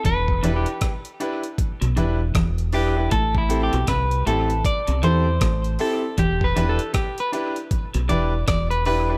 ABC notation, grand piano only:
X:1
M:4/4
L:1/16
Q:"Swing 16ths" 1/4=78
K:Em
V:1 name="Grand piano"
z2 [DEGB] z3 [DEGB] z3 [DEGB] z3 [DEGB] [DEGB] | z2 [CEGA] z3 [CEGA] z3 [CEGA] z3 [CEGA] z | z2 [DEGB] z3 [DEGB] z3 [DEGB] z3 [DEGB] [DEGB] |]